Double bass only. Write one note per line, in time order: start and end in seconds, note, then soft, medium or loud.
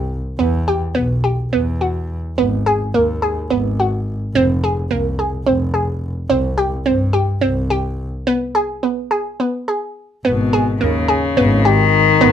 0.00 0.18 C2 medium
0.39 0.81 E2 medium
0.96 1.38 B1 medium
1.52 2.17 E2 medium
2.38 2.80 G#1 medium
2.95 3.37 D#2 medium
3.50 4.14 G#1 medium
4.35 4.77 F1 medium
4.90 5.32 C2 medium
5.45 6.09 F1 medium
6.29 6.72 C2 medium
6.86 7.28 G2 medium
7.42 8.06 C2 medium
10.25 10.68 G#1 medium
10.82 11.03 D#2 medium
11.38 12.01 G#1 loud
12.22 12.32 G#1 medium